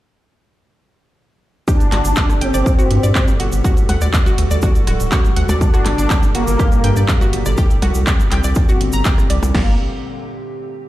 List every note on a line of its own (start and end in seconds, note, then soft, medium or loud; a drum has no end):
1.68 9.60 G2 medium
1.68 3.62 A#2 medium
1.68 9.60 G3 medium
1.68 2.43 D4 loud
1.68 1.75 G4 medium
1.68 3.63 G4 medium
1.68 7.54 A4 medium
1.68 1.75 G5 medium
1.68 kick loud
1.68 closed hi-hat soft
1.68 cabasa medium
1.80 closed hi-hat soft
1.80 cabasa soft
1.92 2.01 G1 loud
1.92 1.99 F#4 medium
1.92 1.99 F#5 medium
1.92 clap medium
1.92 closed hi-hat loud
1.92 percussion blips medium
2.05 2.14 G1 medium
2.05 closed hi-hat soft
2.05 cabasa medium
2.16 2.24 G4 medium
2.16 2.24 G5 medium
2.16 kick loud
2.16 clap loud
2.16 closed hi-hat soft
2.16 cabasa medium
2.30 cross-stick medium
2.30 closed hi-hat soft
2.30 cabasa soft
2.41 2.51 G1 loud
2.41 3.30 C4 loud
2.41 2.49 G5 medium
2.41 2.49 G6 medium
2.41 closed hi-hat loud
2.54 2.63 G1 medium
2.54 2.61 D5 medium
2.54 2.61 D6 medium
2.54 closed hi-hat soft
2.54 cabasa medium
2.66 kick loud
2.66 closed hi-hat soft
2.66 cabasa medium
2.79 2.85 F#4 medium
2.79 2.85 F#5 medium
2.79 closed hi-hat soft
2.79 cabasa soft
2.91 3.00 G2 medium
2.91 closed hi-hat loud
3.03 3.12 G2 medium
3.03 3.10 D5 medium
3.03 3.10 D6 medium
3.03 closed hi-hat soft
3.03 cabasa medium
3.15 3.22 G4 medium
3.15 3.22 G5 medium
3.15 kick loud
3.15 cross-stick medium
3.15 clap loud
3.15 closed hi-hat soft
3.15 cabasa medium
3.28 closed hi-hat soft
3.28 cabasa soft
3.40 3.49 G1 medium
3.40 3.47 F#4 medium
3.40 3.47 F#5 medium
3.40 closed hi-hat loud
3.52 3.61 G1 medium
3.52 closed hi-hat soft
3.52 cabasa medium
3.64 5.59 D3 medium
3.64 5.59 F#4 medium
3.64 3.72 F#4 medium
3.64 3.72 F#5 medium
3.64 kick loud
3.64 closed hi-hat soft
3.64 cabasa medium
3.77 closed hi-hat soft
3.77 cabasa soft
3.89 3.98 D2 medium
3.89 3.96 F#5 medium
3.89 3.96 F#6 medium
3.89 closed hi-hat loud
3.89 percussion blips medium
4.01 4.10 D2 medium
4.01 4.08 D5 medium
4.01 4.08 D6 medium
4.01 cross-stick medium
4.01 closed hi-hat soft
4.01 cabasa medium
4.14 kick loud
4.14 clap loud
4.14 closed hi-hat soft
4.14 cabasa medium
4.26 4.33 F#4 medium
4.26 4.33 F#5 medium
4.26 closed hi-hat soft
4.26 cabasa soft
4.38 4.47 D2 medium
4.38 closed hi-hat loud
4.51 4.59 D2 medium
4.51 4.58 D5 medium
4.51 4.58 D6 medium
4.51 closed hi-hat soft
4.51 cabasa medium
4.62 4.70 F#4 medium
4.62 4.70 F#5 medium
4.62 kick loud
4.62 closed hi-hat soft
4.62 cabasa medium
4.75 closed hi-hat soft
4.75 cabasa soft
4.87 4.96 D1 loud
4.87 4.95 F#4 medium
4.87 4.95 F#5 medium
4.87 cross-stick medium
4.87 closed hi-hat loud
5.00 5.09 D1 medium
5.00 closed hi-hat soft
5.00 cabasa medium
5.12 5.19 F#4 medium
5.12 5.19 F#5 medium
5.12 kick loud
5.12 clap loud
5.12 closed hi-hat soft
5.12 cabasa medium
5.25 closed hi-hat soft
5.25 cabasa soft
5.36 5.46 D2 medium
5.36 5.44 F#5 medium
5.36 5.44 F#6 medium
5.36 closed hi-hat loud
5.49 5.58 D2 medium
5.49 5.56 D5 medium
5.49 5.56 D6 medium
5.49 closed hi-hat soft
5.49 percussion blips medium
5.49 cabasa medium
5.61 7.56 A#2 medium
5.61 6.25 D4 loud
5.61 9.51 G4 medium
5.61 kick loud
5.61 closed hi-hat soft
5.61 cabasa medium
5.74 5.81 F#4 medium
5.74 5.81 F#5 medium
5.74 cross-stick medium
5.74 closed hi-hat soft
5.74 cabasa soft
5.86 5.95 G1 loud
5.86 clap medium
5.86 closed hi-hat loud
5.86 percussion blips medium
5.98 6.07 G1 medium
5.98 6.05 D5 medium
5.98 6.05 D6 medium
5.98 closed hi-hat soft
5.98 cabasa medium
6.10 6.17 G4 medium
6.10 6.17 G5 medium
6.10 kick loud
6.10 clap loud
6.10 closed hi-hat soft
6.10 cabasa medium
6.23 closed hi-hat soft
6.23 cabasa soft
6.35 6.44 G1 medium
6.35 7.24 A#3 loud
6.35 6.42 F#4 medium
6.35 6.42 F#5 medium
6.35 closed hi-hat loud
6.47 6.56 G1 medium
6.47 closed hi-hat soft
6.47 cabasa medium
6.59 6.67 G4 medium
6.59 6.67 G5 medium
6.59 kick loud
6.59 cross-stick medium
6.59 closed hi-hat soft
6.59 cabasa medium
6.72 closed hi-hat soft
6.72 cabasa soft
6.84 6.93 G2 medium
6.84 6.91 G5 medium
6.84 6.91 G6 medium
6.84 closed hi-hat loud
6.96 7.05 G2 medium
6.96 7.04 D5 medium
6.96 7.04 D6 medium
6.96 closed hi-hat soft
6.96 cabasa medium
7.08 kick loud
7.08 clap loud
7.08 closed hi-hat soft
7.08 cabasa medium
7.21 7.28 F#4 medium
7.21 7.28 F#5 medium
7.21 closed hi-hat soft
7.21 cabasa soft
7.33 7.42 G1 medium
7.33 closed hi-hat loud
7.46 7.54 G1 medium
7.46 7.53 D5 medium
7.46 7.53 D6 medium
7.46 cross-stick medium
7.46 closed hi-hat soft
7.46 cabasa medium
7.57 9.53 D3 medium
7.57 9.53 C4 medium
7.57 7.65 G4 medium
7.57 7.65 G5 medium
7.57 kick loud
7.57 closed hi-hat soft
7.57 cabasa medium
7.70 closed hi-hat soft
7.70 cabasa soft
7.82 7.92 C2 loud
7.82 7.90 F#4 medium
7.82 7.90 F#5 medium
7.82 closed hi-hat loud
7.82 percussion blips medium
7.95 8.04 C2 medium
7.95 closed hi-hat soft
7.95 cabasa medium
8.07 8.14 G4 medium
8.07 8.14 G5 medium
8.07 kick loud
8.07 clap loud
8.07 closed hi-hat soft
8.07 cabasa medium
8.20 closed hi-hat soft
8.20 cabasa soft
8.32 8.41 C2 loud
8.32 8.39 G5 medium
8.32 8.39 G6 medium
8.32 cross-stick medium
8.32 clap medium
8.32 closed hi-hat loud
8.44 8.53 C2 medium
8.44 8.51 D5 medium
8.44 8.51 D6 medium
8.44 closed hi-hat soft
8.44 cabasa medium
8.55 kick loud
8.55 closed hi-hat soft
8.55 cabasa medium
8.69 8.76 F#4 medium
8.69 8.76 F#5 medium
8.69 closed hi-hat soft
8.69 cabasa soft
8.81 8.90 G1 medium
8.81 closed hi-hat loud
8.92 9.02 G1 medium
8.92 9.00 A#5 loud
8.92 9.00 A#6 medium
8.92 closed hi-hat soft
8.92 cabasa medium
9.05 9.10 G5 medium
9.05 9.10 G6 medium
9.05 kick loud
9.05 clap loud
9.05 closed hi-hat soft
9.05 cabasa medium
9.18 cross-stick medium
9.18 closed hi-hat soft
9.18 cabasa soft
9.30 9.39 C2 medium
9.30 9.41 D5 medium
9.30 9.41 D6 medium
9.30 closed hi-hat loud
9.43 9.51 C2 medium
9.43 closed hi-hat soft
9.43 percussion blips medium
9.43 cabasa medium
9.55 9.77 G1 loud
9.55 9.73 A#3 medium
9.55 9.78 G4 medium
9.55 kick loud
9.55 snare loud
9.55 crash medium